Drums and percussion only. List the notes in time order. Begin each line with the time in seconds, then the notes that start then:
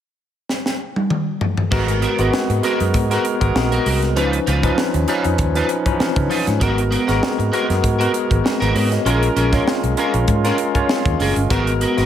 0.49 snare
0.66 snare
0.96 high tom
1.10 mid tom
1.41 floor tom
1.57 floor tom
1.72 kick, crash
1.88 closed hi-hat
2.02 closed hi-hat
2.19 closed hi-hat
2.34 snare
2.50 closed hi-hat
2.63 closed hi-hat
2.80 closed hi-hat
2.94 kick, closed hi-hat
3.11 closed hi-hat
3.25 closed hi-hat
3.41 kick, closed hi-hat
3.56 snare
3.72 closed hi-hat
3.86 open hi-hat
4.02 snare, closed hi-hat
4.17 closed hi-hat
4.33 closed hi-hat
4.47 closed hi-hat
4.63 kick, closed hi-hat
4.78 snare
4.94 closed hi-hat
5.08 closed hi-hat
5.24 closed hi-hat
5.38 kick, closed hi-hat
5.55 snare, closed hi-hat
5.69 closed hi-hat
5.86 kick, closed hi-hat
6.00 snare
6.16 kick, closed hi-hat
6.31 open hi-hat
6.47 snare, closed hi-hat
6.61 kick, closed hi-hat
6.78 closed hi-hat
6.92 closed hi-hat
7.08 snare, closed hi-hat
7.23 snare
7.40 closed hi-hat
7.53 closed hi-hat
7.70 snare, closed hi-hat
7.84 kick, closed hi-hat
8.01 closed hi-hat
8.14 closed hi-hat
8.31 kick, closed hi-hat
8.46 snare
8.62 closed hi-hat
8.76 open hi-hat
8.92 snare, closed hi-hat
9.06 closed hi-hat
9.23 closed hi-hat
9.37 closed hi-hat
9.53 kick, snare, closed hi-hat
9.68 snare
9.84 closed hi-hat
9.97 closed hi-hat
10.14 closed hi-hat
10.28 kick, closed hi-hat
10.45 snare, closed hi-hat
10.58 closed hi-hat
10.75 kick, closed hi-hat
10.89 snare
11.06 kick, closed hi-hat
11.20 open hi-hat
11.36 closed hi-hat
11.50 kick, closed hi-hat
11.67 closed hi-hat
11.81 closed hi-hat
11.98 snare, closed hi-hat